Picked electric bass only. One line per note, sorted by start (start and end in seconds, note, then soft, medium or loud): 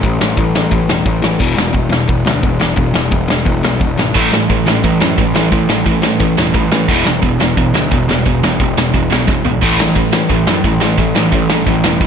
0.03 0.20 A1 medium
0.20 0.37 A1 medium
0.38 0.70 A1 medium
0.72 0.88 A1 medium
0.88 1.05 E1 medium
1.06 1.22 A1 medium
1.23 1.39 A1 medium
1.40 1.56 E1 medium
1.57 1.74 E1 medium
1.75 2.07 E1 medium
2.09 2.25 E1 medium
2.26 2.42 D2 medium
2.43 2.76 E1 medium
2.78 2.94 E1 medium
2.95 3.11 E1 medium
3.12 3.45 E1 medium
3.46 3.63 E1 medium
3.64 3.80 B1 medium
3.81 3.97 E1 medium
3.98 4.14 G#1 medium
4.15 4.32 A1 medium
4.33 4.49 A1 medium
4.50 4.82 A1 medium
4.84 5.00 A1 medium
5.01 5.18 F#2 medium
5.18 5.51 A1 medium
5.52 5.69 A1 medium
5.69 5.86 A1 medium
5.86 6.19 A1 medium
6.20 6.37 A1 medium
6.38 6.54 E1 medium
6.54 6.71 A1 medium
6.72 6.88 A1 medium
6.89 7.05 E1 loud
7.06 7.22 E1 medium
7.23 7.56 E1 medium
7.57 7.73 E1 medium
7.74 7.91 D2 medium
7.92 8.24 E1 medium
8.26 8.42 E1 medium
8.43 8.59 E1 medium
8.60 8.92 E1 medium
8.94 9.10 E1 medium
9.11 9.27 B1 medium
9.28 9.44 E1 medium
9.45 9.61 B1 medium
9.63 9.78 A1 medium
9.79 9.95 A1 medium
9.96 10.29 A1 medium
10.30 10.46 A1 medium
10.47 10.63 F#2 medium
10.64 10.97 A1 medium
10.98 11.15 A1 medium
11.16 11.32 A1 medium
11.32 11.65 A1 medium
11.67 11.83 A1 medium
11.84 12.00 E1 medium
12.01 12.07 A1 medium